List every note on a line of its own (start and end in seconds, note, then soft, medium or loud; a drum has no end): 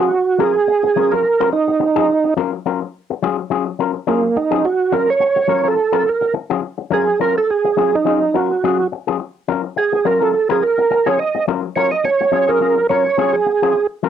0.00 0.44 F#4 medium
0.11 muted clean electric guitar stroke soft
0.39 0.53 F#3 medium
0.39 0.53 C#4 medium
0.39 0.53 F4 medium
0.39 1.15 G#4 loud
0.39 0.54 A#4 medium
0.55 muted clean electric guitar stroke soft
0.68 muted clean electric guitar stroke soft
0.83 muted clean electric guitar stroke medium
0.96 1.10 F#3 medium
0.96 1.10 C#4 medium
0.96 1.10 F4 medium
0.96 1.11 A#4 medium
1.12 1.23 F#3 medium
1.12 1.23 C#4 medium
1.12 1.23 F4 medium
1.12 1.50 A#4 loud
1.12 1.23 A#4 medium
1.24 muted clean electric guitar stroke soft
1.40 1.51 F#3 medium
1.40 1.52 C#4 medium
1.40 1.52 F4 medium
1.40 1.53 A#4 medium
1.52 2.34 D#4 medium
1.52 muted clean electric guitar stroke soft
1.68 muted clean electric guitar stroke soft
1.80 muted clean electric guitar stroke medium
1.96 2.08 F#3 medium
1.96 2.08 C#4 medium
1.96 2.08 F4 medium
1.96 2.08 G#4 medium
2.09 muted clean electric guitar stroke soft
2.24 muted clean electric guitar stroke soft
2.37 2.55 F#3 medium
2.37 2.52 C#4 medium
2.37 2.52 F4 loud
2.37 2.53 A#4 medium
2.53 muted clean electric guitar stroke soft
2.66 2.80 F#3 medium
2.66 2.80 C#4 medium
2.66 2.80 F4 medium
2.66 2.80 A#4 medium
2.82 muted clean electric guitar stroke soft
3.10 muted clean electric guitar stroke medium
3.22 3.40 F#3 medium
3.22 3.38 C#4 medium
3.22 3.38 F4 medium
3.22 3.37 G#4 medium
3.39 muted clean electric guitar stroke soft
3.50 3.68 F#3 medium
3.50 3.66 C#4 medium
3.50 3.66 F4 medium
3.50 3.65 G#4 medium
3.67 muted clean electric guitar stroke soft
3.79 3.93 F#3 medium
3.79 3.94 C#4 medium
3.79 3.94 F4 medium
3.79 3.94 A#4 medium
3.94 muted clean electric guitar stroke soft
4.07 4.25 F#3 medium
4.07 4.38 A#3 medium
4.07 4.23 C#4 medium
4.07 4.23 F4 medium
4.07 4.22 G#4 medium
4.23 muted clean electric guitar stroke medium
4.36 4.66 D#4 medium
4.36 muted clean electric guitar stroke soft
4.51 4.62 F#3 medium
4.51 4.63 C#4 medium
4.51 4.63 F4 medium
4.51 4.63 G#4 medium
4.64 4.94 F#4 medium
4.64 muted clean electric guitar stroke medium
4.92 5.07 F#3 medium
4.92 5.07 C#4 medium
4.92 5.07 F4 medium
4.92 5.10 A#4 loud
4.92 5.07 A#4 medium
5.09 5.68 C#5 loud
5.09 muted clean electric guitar stroke soft
5.20 muted clean electric guitar stroke soft
5.36 muted clean electric guitar stroke soft
5.48 5.63 F#3 medium
5.48 5.63 C#4 medium
5.48 5.63 F4 medium
5.48 5.62 A#4 medium
5.63 5.75 F#3 medium
5.63 5.76 C#4 medium
5.63 5.76 F4 medium
5.63 5.76 A#4 medium
5.68 6.09 A4 medium
5.77 muted clean electric guitar stroke soft
5.92 6.04 F#3 medium
5.92 6.04 C#4 medium
5.92 6.04 F4 medium
5.92 6.05 A#4 medium
6.05 muted clean electric guitar stroke soft
6.09 6.35 A#4 medium
6.21 muted clean electric guitar stroke soft
6.34 muted clean electric guitar stroke soft
6.50 6.61 F#3 medium
6.50 6.62 C#4 medium
6.50 6.62 F4 medium
6.50 6.62 G#4 medium
6.62 muted clean electric guitar stroke soft
6.78 muted clean electric guitar stroke soft
6.91 7.09 F#3 medium
6.91 7.07 C#4 medium
6.91 7.07 F4 medium
6.91 7.20 G#4 medium
6.91 7.07 A#4 medium
7.07 muted clean electric guitar stroke soft
7.20 7.34 F#3 medium
7.20 7.35 C#4 medium
7.20 7.35 F4 medium
7.20 7.35 A#4 medium
7.20 7.36 A#4 medium
7.36 7.50 A4 loud
7.36 muted clean electric guitar stroke soft
7.51 7.96 G#4 medium
7.65 muted clean electric guitar stroke soft
7.77 7.95 F#3 medium
7.77 7.93 C#4 medium
7.77 7.92 F4 medium
7.77 7.92 G#4 medium
7.93 8.37 D#4 medium
7.93 muted clean electric guitar stroke medium
8.05 8.23 F#3 medium
8.05 8.21 C#4 medium
8.05 8.21 F4 medium
8.05 8.20 G#4 medium
8.22 muted clean electric guitar stroke soft
8.34 8.48 F#3 medium
8.34 8.49 C#4 medium
8.34 8.49 F4 medium
8.34 8.88 F#4 medium
8.34 8.49 A#4 medium
8.51 muted clean electric guitar stroke soft
8.64 8.81 F#3 medium
8.64 8.80 C#4 loud
8.64 8.79 F4 medium
8.64 8.79 G#4 loud
8.80 muted clean electric guitar stroke soft
8.92 muted clean electric guitar stroke soft
9.07 9.18 F#3 soft
9.07 9.19 C#4 medium
9.07 9.19 F4 medium
9.07 9.19 G#4 medium
9.20 muted clean electric guitar stroke soft
9.49 9.63 F#3 medium
9.49 9.63 C#4 medium
9.49 9.63 F4 medium
9.49 9.63 A#4 medium
9.64 muted clean electric guitar stroke soft
9.76 10.07 G#4 medium
9.76 muted clean electric guitar stroke soft
9.93 muted clean electric guitar stroke soft
10.05 10.19 F#3 medium
10.05 10.20 C#4 medium
10.05 10.20 F4 medium
10.05 10.19 A#4 medium
10.05 10.23 A#4 medium
10.21 10.32 F#3 medium
10.21 10.33 C#4 medium
10.21 10.33 F4 medium
10.21 10.48 A4 medium
10.21 10.32 A#4 medium
10.33 muted clean electric guitar stroke soft
10.49 10.61 F#3 medium
10.49 10.62 C#4 medium
10.49 10.61 F4 medium
10.49 10.64 G#4 medium
10.49 10.63 A#4 medium
10.62 11.09 A#4 medium
10.62 muted clean electric guitar stroke soft
10.78 muted clean electric guitar stroke soft
10.91 muted clean electric guitar stroke soft
11.06 11.18 F#3 medium
11.06 11.18 C#4 medium
11.06 11.19 F4 medium
11.06 11.19 G#4 medium
11.06 11.20 C#5 medium
11.19 11.46 D#5 medium
11.19 muted clean electric guitar stroke soft
11.35 muted clean electric guitar stroke medium
11.48 11.65 F#3 medium
11.48 11.63 C#4 medium
11.48 11.62 F4 medium
11.48 11.62 A#4 medium
11.63 muted clean electric guitar stroke soft
11.76 11.90 F#3 medium
11.76 11.91 C#4 medium
11.76 11.91 F4 medium
11.76 11.91 A#4 medium
11.76 11.91 C#5 medium
11.91 12.05 D#5 loud
11.91 muted clean electric guitar stroke soft
12.04 12.51 C#5 medium
12.04 muted clean electric guitar stroke soft
12.21 muted clean electric guitar stroke soft
12.32 12.47 F#3 medium
12.32 12.47 C#4 medium
12.32 12.47 F4 medium
12.32 12.46 G#4 medium
12.47 12.59 F#3 medium
12.47 12.60 C#4 medium
12.47 12.60 F4 medium
12.47 12.59 G#4 medium
12.47 12.87 A#4 loud
12.60 12.79 F#3 medium
12.60 12.77 C#4 medium
12.60 12.76 F4 medium
12.60 12.76 G#4 medium
12.77 muted clean electric guitar stroke medium
12.89 13.04 F#3 medium
12.89 13.04 C#4 medium
12.89 13.04 F4 medium
12.89 13.05 A#4 medium
12.89 13.36 C#5 loud
13.06 muted clean electric guitar stroke soft
13.18 13.36 F#3 loud
13.18 13.34 C#4 loud
13.18 13.33 F4 medium
13.18 13.33 G#4 loud
13.33 13.87 G#4 medium
13.33 muted clean electric guitar stroke soft
13.46 muted clean electric guitar stroke soft
13.62 13.73 F#3 soft
13.62 13.74 C#4 medium
13.62 13.74 F4 medium
13.62 13.74 G#4 medium
13.75 muted clean electric guitar stroke soft
14.03 14.09 F#3 medium
14.03 14.09 C#4 medium
14.03 14.09 F4 medium
14.03 14.09 A#4 medium